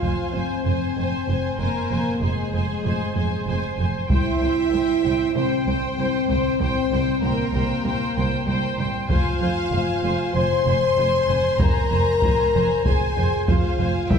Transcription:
Already playing: F4 F5
0.03 F1 F2 C5 G#5, taiko
0.33 F1 F2 C4 C5 G#5
0.64 F1 F2 C5 G#5
0.97 F1 F2 C5 G#5
1.28 F1 F2 C5 G#5
1.59 F1 F2 A#3 A#4 C5 G#5
1.90 F1 F2 C5 G#5
2.22 F1 F2 G#3 G#4 C5 G#5
2.53 F1 F2 C5 G#5
2.85 F1 F2 C5 G#5
3.16 F1 F2 C5 G#5
3.47 F1 F2 C5 G#5
3.78 F1 F2 C5 G#5
4.09 C2 E4 C5 E5 G5, taiko
4.40 C2 C5 G5
4.72 C2 C5 G5
5.04 C2 C5 G5
5.35 C2 C4 C5 G5
5.66 C2 C5 G5
5.98 C2 C5 G5
6.29 C2 C5 G5
6.60 C2 C4 C5 G5
6.92 C2 C5 G5
7.23 C2 A#3 A#4 C5 G5
7.54 C2 C5 G5
7.85 C2 C5 G5
8.16 C2 C5 G5
8.47 C2 C5 G5
8.78 C2 C5 G5
9.09 F1 F2 F4 C5 F5 G#5, taiko
9.41 F1 F2 C5 G#5
9.72 F1 F2 C5 G#5
10.03 F1 F2 C5 G#5
10.34 F1 F2 C5 G#5 C6
10.66 F1 F2 C5 G#5
10.97 F1 F2 C5 G#5
11.28 F1 F2 C5 G#5
11.59 F1 F2 A#4 C5 G#5 A#5, taiko
11.90 F1 F2 C5 G#5
12.22 F1 F2 C5 G#5, taiko
12.54 F1 F2 C5 G#5
12.85 F1 F2 G#4 C5 G#5, taiko
13.16 F1 F2 C5 G#5
13.48 F1 F2 F4 C5 F5 G#5, taiko
13.79 F1 F2 C5 G#5
14.09 C2 E4 C5 E5 G5, taiko

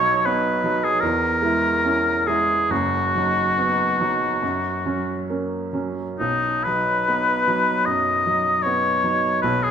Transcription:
Already playing: B1 F#3 D#4 C#5
0.25 B3 D#4 B4
0.64 F#3 D#4
0.84 G#4
1.00 E2 A#4
1.42 G#3 E4
1.85 C#4 E4
2.27 G#3 E4 G#4
2.70 F#1 F#2 F#4
3.15 F#3 D#4
3.58 B3 D#4
4.01 F#3 D#4
4.43 F#2
4.86 F#3 C#4
5.30 A#3 C#4
5.73 F#3 C#4
6.19 B1 D#4
6.64 F#3 D#4 B4
7.08 B3 D#4
7.48 F#3 D#4
7.86 F#2 D#5
8.27 F#3 D#4
8.63 B3 D#4 C#5
9.04 F#3 D#4
9.42 B1 B4
9.63 G#4

